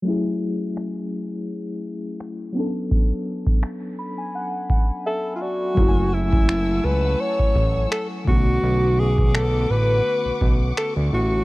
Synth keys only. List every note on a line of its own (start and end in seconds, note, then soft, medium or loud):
0.02 2.50 F#3 medium
0.02 2.51 A3 medium
0.02 2.52 C#4 medium
0.08 2.53 E4 medium
0.08 2.54 G#4 medium
2.52 5.36 F#3 medium
2.52 5.37 B3 medium
2.52 5.38 C#4 medium
2.58 5.38 D4 medium
2.58 5.39 A4 medium
3.99 4.17 B5 medium
4.18 4.33 G#5 medium
4.35 4.68 F#5 medium
4.70 5.04 F#5 medium
5.06 5.39 E5 medium
5.42 5.75 D5 medium
5.74 8.22 F#3 medium
5.74 8.23 A3 medium
5.74 8.24 C#4 medium
5.80 8.24 E4 medium
5.80 5.86 F#4 medium
5.88 8.29 G#5 medium
8.24 11.08 D3 medium
8.24 11.08 A3 medium
8.24 11.09 B3 medium
8.30 11.10 C#4 medium
8.30 11.11 F#4 medium